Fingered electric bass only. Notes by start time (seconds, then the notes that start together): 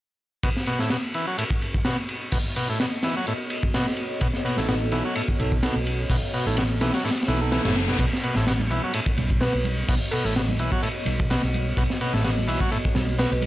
4.21 B1
4.58 A1
4.92 B1
5.40 B1
5.76 B1
6.10 B1
6.46 A1
6.81 B1
7.28 B1
7.65 F#1
7.99 B1
8.36 A1
8.70 B1
9.18 B1
9.54 B1
9.89 B1
10.25 A1
10.60 B1
11.06 B1
11.43 B1
11.77 B1
12.13 A1
12.47 B1
12.95 B1
13.31 B1